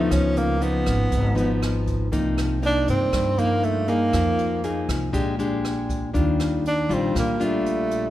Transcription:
Already playing: nylon-string guitar F3 B3 D#4, tenor saxophone A3
0.11 upright bass C#2, nylon-string guitar C#3, tenor saxophone C#4, kick, cross-stick, closed hi-hat
0.37 tenor saxophone A#3, closed hi-hat
0.61 nylon-string guitar F3 B3 D#4, tenor saxophone B3, closed hi-hat
0.86 upright bass G#1, kick, cross-stick, closed hi-hat
1.11 upright bass G#1, nylon-string guitar G#2, kick, closed hi-hat
1.35 nylon-string guitar F3 B3 D#4, closed hi-hat
1.62 cross-stick, closed hi-hat
1.87 kick, closed hi-hat
2.12 upright bass C2, nylon-string guitar C3 F3 A#3 D#4, kick, closed hi-hat
2.38 cross-stick, closed hi-hat
2.62 nylon-string guitar F3 A#3 D#4, tenor saxophone D4, closed hi-hat
2.88 upright bass G2, tenor saxophone C4, closed hi-hat
3.12 nylon-string guitar G2, upright bass G2, kick, cross-stick, closed hi-hat
3.38 nylon-string guitar F3 A#3 D#4, tenor saxophone A#3, closed hi-hat
3.63 tenor saxophone A3, closed hi-hat
3.88 nylon-string guitar A#3 D#4 G#4, tenor saxophone A#3, closed hi-hat
4.13 upright bass F2, nylon-string guitar F3, kick, cross-stick, closed hi-hat
4.39 closed hi-hat
4.63 nylon-string guitar A#3 D#4 G#4, closed hi-hat
4.89 upright bass C2, kick, cross-stick, closed hi-hat
5.13 upright bass A#1, nylon-string guitar A#2 G#3 D4 G4, kick, closed hi-hat
5.39 nylon-string guitar G#3 D4 G4, closed hi-hat
5.65 cross-stick, closed hi-hat
5.89 kick, closed hi-hat
6.14 upright bass D#2, nylon-string guitar D#3 G3 D4 F4, kick, closed hi-hat
6.40 cross-stick, closed hi-hat
6.65 tenor saxophone D4, closed hi-hat
6.89 upright bass A#1, nylon-string guitar G3 D4 F4, closed hi-hat
6.94 tenor saxophone C4
7.15 upright bass A#1, nylon-string guitar A#2, tenor saxophone A#3, kick, cross-stick, closed hi-hat
7.40 nylon-string guitar G3 D4 F4, tenor saxophone A3, closed hi-hat
7.66 closed hi-hat
7.91 closed hi-hat

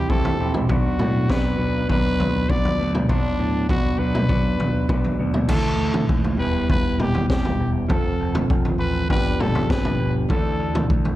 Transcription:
Already playing: trumpet G4
0.09 picked electric bass C2, clean electric guitar E3 C4 E4 G4, trumpet A4, kick
0.25 floor tom
0.39 picked electric bass A#1, clean electric guitar E3 C4 E4 G4
0.54 mid tom
0.69 picked electric bass B1, clean electric guitar F#3 B3 D4, trumpet F#4, kick, floor tom
0.99 picked electric bass A2, mid tom
1.29 picked electric bass B1, clean electric guitar F#3 B3 D4, trumpet B4, kick, snare, floor tom
1.58 picked electric bass B1, clean electric guitar F#3 B3 D4
1.88 picked electric bass B1, clean electric guitar F#3 B3 D4, trumpet B4, kick, floor tom
2.19 picked electric bass B1, floor tom
2.49 picked electric bass B1, clean electric guitar F#3 B3 D4, trumpet D5, kick
2.65 floor tom
2.78 picked electric bass D2, clean electric guitar F#3 B3 D4
2.95 mid tom
3.08 picked electric bass B1, clean electric guitar F#3 B3 D4, trumpet D4, kick, floor tom
3.38 picked electric bass A2
3.69 picked electric bass B1, clean electric guitar F#3 B3 D4, trumpet F#4, kick, floor tom
3.98 picked electric bass B1, clean electric guitar F#3 B3 D4, trumpet B4
4.15 mid tom
4.28 picked electric bass B1, clean electric guitar F#3 B3 D4, kick, floor tom
4.57 picked electric bass B1, floor tom
4.89 picked electric bass B1, clean electric guitar F#3 B3 D4, kick, mid tom
5.04 floor tom
5.18 picked electric bass D2, clean electric guitar F#3 B3 D4
5.34 mid tom
5.48 picked electric bass D2, clean electric guitar E3 A3 E4, trumpet A4, kick, floor tom, crash
5.77 picked electric bass D2
5.94 floor tom, mid tom
6.09 picked electric bass D#2, kick
6.24 floor tom
6.37 picked electric bass E1, clean electric guitar G3 B3 E4, trumpet B4
6.69 picked electric bass E1, trumpet B4, kick, floor tom
6.98 picked electric bass E1, trumpet G4, mid tom
7.14 floor tom
7.29 picked electric bass E1, trumpet G4, kick, snare
7.45 floor tom, mid tom
7.59 picked electric bass E1
7.88 picked electric bass F1, clean electric guitar F3 C4 F4, trumpet A4, kick, floor tom
7.93 clean electric guitar A4
8.20 picked electric bass F1
8.35 floor tom, mid tom
8.50 picked electric bass F1, kick
8.65 floor tom
8.78 picked electric bass A1, trumpet B4
9.09 picked electric bass G1, clean electric guitar F3 B3 D4 G4, trumpet B4, kick, floor tom
9.39 picked electric bass G1, trumpet A4, mid tom
9.55 floor tom
9.70 picked electric bass G1, trumpet B4, kick, snare
9.85 floor tom, mid tom
9.99 picked electric bass G1
10.29 picked electric bass D2, clean electric guitar E3 A3 D4 A4, trumpet A4, kick, floor tom
10.59 picked electric bass D2
10.75 floor tom, mid tom
10.90 picked electric bass D2, kick
11.05 floor tom

